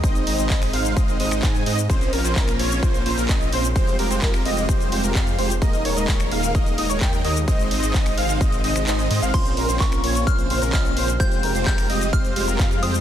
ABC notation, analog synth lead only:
X:1
M:4/4
L:1/16
Q:1/4=129
K:Fm
V:1 name="Analog synth lead"
e2 e e e2 f2 e2 e e a2 e z | c2 B c B2 d2 c2 c B e2 c z | c2 B c B2 e2 c2 c B f2 c z | e2 d e d2 f2 e2 e d g2 e z |
e2 e e e2 f2 e2 e e e2 e f | c2 B c B2 d2 c2 c B e2 c z | c2 B c B2 e2 c2 c B f2 c z |]